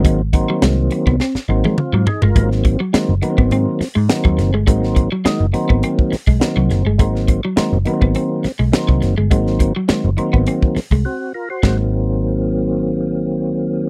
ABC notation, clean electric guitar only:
X:1
M:4/4
L:1/16
Q:1/4=104
K:Abmix
V:1 name="Clean electric guitar" clef=bass
A, z2 G, A, z2 _C =C z2 A, z G, z A, | A, z2 G, A, z2 _C =C z2 A, z G, z A, | A, z2 G, A, z2 _C =C z2 A, z G, z A, | A, z2 G, A, z2 _C =C z2 A, z G, z A, |
A, z2 G, A, z2 _C =C z2 A, z4 | A,2 z12 z2 |]